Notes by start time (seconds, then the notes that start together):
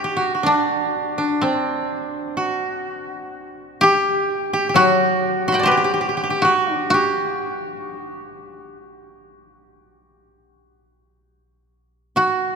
Already playing: G4
0.04 G4
0.17 F#4
0.35 F#4
0.43 D4
1.18 D4
1.41 C4
2.37 F#4
3.81 G4
4.53 G4
4.69 G4
4.74 F#3 F#4
5.48 F#4 C6
5.52 F#5 G5 B5
5.59 C5 D5
5.66 G4 B4
5.71 G4
5.77 G4
5.84 G4
5.94 G4
6.01 G4
6.09 G4
6.17 G4
6.23 G4
6.30 G4
6.42 F#4
6.74 D4
6.90 F#4 G4
8.13 G4
12.16 F#4